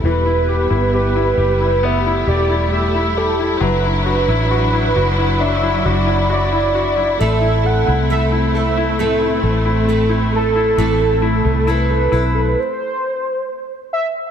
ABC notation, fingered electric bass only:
X:1
M:4/4
L:1/16
Q:1/4=67
K:Em
V:1 name="Fingered electric bass" clef=bass
E,,,3 G,,,3 F,,,4 E,,,6 | F,,,3 A,,,3 F,,,4 F,,,6 | A,,,3 C,,6- C,, A,,,6 | A,,,3 C,,3 B,,,2 z8 |]